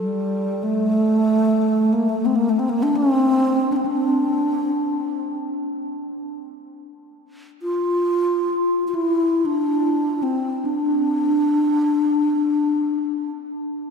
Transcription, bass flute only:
0, 0, Header, 1, 2, 480
1, 0, Start_track
1, 0, Tempo, 500000
1, 13347, End_track
2, 0, Start_track
2, 0, Title_t, "Bass flute"
2, 0, Program_c, 0, 73
2, 0, Note_on_c, 0, 55, 57
2, 607, Note_on_c, 0, 57, 69
2, 622, Note_off_c, 0, 55, 0
2, 1851, Note_on_c, 0, 58, 66
2, 1866, Note_off_c, 0, 57, 0
2, 2009, Note_on_c, 0, 57, 71
2, 2023, Note_off_c, 0, 58, 0
2, 2165, Note_on_c, 0, 60, 70
2, 2179, Note_off_c, 0, 57, 0
2, 2263, Note_on_c, 0, 58, 69
2, 2277, Note_off_c, 0, 60, 0
2, 2395, Note_on_c, 0, 57, 67
2, 2409, Note_off_c, 0, 58, 0
2, 2489, Note_on_c, 0, 60, 75
2, 2504, Note_off_c, 0, 57, 0
2, 2588, Note_on_c, 0, 58, 69
2, 2602, Note_off_c, 0, 60, 0
2, 2715, Note_on_c, 0, 62, 72
2, 2729, Note_off_c, 0, 58, 0
2, 2840, Note_on_c, 0, 60, 86
2, 2855, Note_off_c, 0, 62, 0
2, 3574, Note_on_c, 0, 62, 66
2, 3588, Note_off_c, 0, 60, 0
2, 3613, Note_on_c, 0, 60, 54
2, 3627, Note_off_c, 0, 62, 0
2, 3702, Note_on_c, 0, 62, 65
2, 3716, Note_off_c, 0, 60, 0
2, 5160, Note_off_c, 0, 62, 0
2, 7319, Note_on_c, 0, 65, 75
2, 8486, Note_off_c, 0, 65, 0
2, 8521, Note_on_c, 0, 65, 54
2, 8588, Note_on_c, 0, 64, 62
2, 8602, Note_off_c, 0, 65, 0
2, 9078, Note_on_c, 0, 62, 67
2, 9092, Note_off_c, 0, 64, 0
2, 9819, Note_on_c, 0, 60, 68
2, 9834, Note_off_c, 0, 62, 0
2, 10227, Note_on_c, 0, 62, 72
2, 10241, Note_off_c, 0, 60, 0
2, 12780, Note_off_c, 0, 62, 0
2, 13347, End_track
0, 0, End_of_file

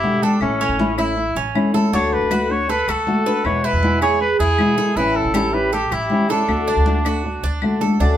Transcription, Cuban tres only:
0, 0, Header, 1, 2, 480
1, 0, Start_track
1, 0, Key_signature, 2, "major"
1, 0, Tempo, 379507
1, 521, Time_signature, 4, 2, 24, 8
1, 10336, End_track
2, 0, Start_track
2, 0, Title_t, "Cuban tres"
2, 0, Program_c, 0, 25
2, 0, Note_on_c, 0, 67, 65
2, 269, Note_off_c, 0, 67, 0
2, 292, Note_on_c, 0, 69, 66
2, 752, Note_off_c, 0, 69, 0
2, 769, Note_on_c, 0, 61, 70
2, 1231, Note_off_c, 0, 61, 0
2, 1246, Note_on_c, 0, 64, 60
2, 1710, Note_off_c, 0, 64, 0
2, 1725, Note_on_c, 0, 61, 66
2, 2189, Note_off_c, 0, 61, 0
2, 2203, Note_on_c, 0, 69, 64
2, 2435, Note_off_c, 0, 69, 0
2, 2445, Note_on_c, 0, 62, 66
2, 2909, Note_off_c, 0, 62, 0
2, 2925, Note_on_c, 0, 66, 66
2, 3389, Note_off_c, 0, 66, 0
2, 3408, Note_on_c, 0, 69, 60
2, 3638, Note_off_c, 0, 69, 0
2, 3650, Note_on_c, 0, 66, 70
2, 4112, Note_off_c, 0, 66, 0
2, 4126, Note_on_c, 0, 71, 62
2, 4590, Note_off_c, 0, 71, 0
2, 4605, Note_on_c, 0, 64, 65
2, 5069, Note_off_c, 0, 64, 0
2, 5084, Note_on_c, 0, 68, 62
2, 5549, Note_off_c, 0, 68, 0
2, 5565, Note_on_c, 0, 64, 73
2, 6029, Note_off_c, 0, 64, 0
2, 6041, Note_on_c, 0, 69, 63
2, 6274, Note_off_c, 0, 69, 0
2, 6282, Note_on_c, 0, 64, 62
2, 6748, Note_off_c, 0, 64, 0
2, 6760, Note_on_c, 0, 67, 72
2, 7227, Note_off_c, 0, 67, 0
2, 7242, Note_on_c, 0, 69, 60
2, 7475, Note_off_c, 0, 69, 0
2, 7486, Note_on_c, 0, 67, 64
2, 7949, Note_off_c, 0, 67, 0
2, 7967, Note_on_c, 0, 69, 69
2, 8430, Note_off_c, 0, 69, 0
2, 8443, Note_on_c, 0, 62, 69
2, 8907, Note_off_c, 0, 62, 0
2, 8926, Note_on_c, 0, 66, 67
2, 9389, Note_off_c, 0, 66, 0
2, 9404, Note_on_c, 0, 62, 74
2, 9867, Note_off_c, 0, 62, 0
2, 9880, Note_on_c, 0, 69, 65
2, 10112, Note_off_c, 0, 69, 0
2, 10123, Note_on_c, 0, 62, 65
2, 10336, Note_off_c, 0, 62, 0
2, 10336, End_track
0, 0, End_of_file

